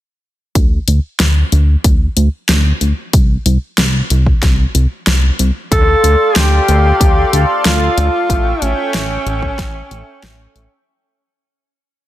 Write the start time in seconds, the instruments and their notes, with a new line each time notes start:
0.55 analog synth bass D2, kick, closed hi-hat
0.88 analog synth bass D2, closed hi-hat
1.20 analog synth bass D2, snare, closed hi-hat
1.52 analog synth bass D2, closed hi-hat
1.84 analog synth bass D2, kick, closed hi-hat
2.17 analog synth bass D2, closed hi-hat
2.49 analog synth bass D2, snare, closed hi-hat
2.81 analog synth bass D2, closed hi-hat
3.13 analog synth bass C2, kick, closed hi-hat
3.46 analog synth bass C2, closed hi-hat
3.78 analog synth bass C2, snare, closed hi-hat
4.10 analog synth bass C2, closed hi-hat
4.26 kick
4.43 analog synth bass C2, kick, snare, closed hi-hat
4.75 analog synth bass C2, closed hi-hat
5.07 analog synth bass C2, snare, closed hi-hat
5.39 analog synth bass C2, closed hi-hat
5.72 analog synth bass D2, analog synth pad A4 D5 F5 C6, alto saxophone A4, kick, closed hi-hat
6.04 analog synth bass D2, closed hi-hat
6.36 analog synth bass D2, alto saxophone G4, snare, closed hi-hat
6.68 analog synth bass D2, closed hi-hat
7.01 analog synth bass D2, kick, closed hi-hat
7.33 analog synth bass D2, closed hi-hat
7.65 analog synth bass D2, alto saxophone F4, snare, closed hi-hat
7.98 analog synth bass D2, closed hi-hat
8.30 analog synth bass A1, analog synth pad E5 G5 C#6, kick, closed hi-hat
8.62 analog synth bass A1, alto saxophone C#4, closed hi-hat
8.94 analog synth bass A1, snare, closed hi-hat
9.26 analog synth bass A1, closed hi-hat
9.42 kick
9.59 analog synth bass A1, kick, snare, closed hi-hat
9.91 analog synth bass A1, closed hi-hat
10.23 analog synth bass A1, snare, closed hi-hat
10.55 analog synth bass A1, closed hi-hat